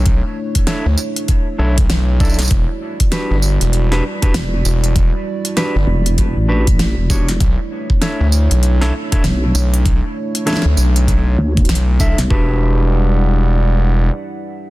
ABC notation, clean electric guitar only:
X:1
M:4/4
L:1/16
Q:"Swing 16ths" 1/4=98
K:Edor
V:1 name="Clean electric guitar"
z4 [DEAc] z4 z [DEAc] z3 [DEAd] z | z4 [DFGB]2 z3 [DFGB] z [DFGB] z4 | z4 [DFGB] z4 z [DFGB] z3 [DFGc] z | z4 [DEAc]2 z3 [DEAc] z [DEAc] z4 |
z4 [DEAc] z8 z [DEAe] z | [DFGB]16 |]